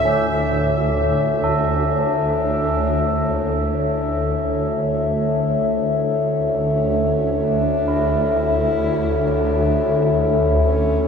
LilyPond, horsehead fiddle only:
\new Staff \with { instrumentName = "Horsehead fiddle" } { \time 4/4 \key c \mixolydian \tempo 4 = 65 r4. cis'8 d'4. bes8 | a4 r2 cis'4 | d'4 e'4 d'4 r8 cis'8 | }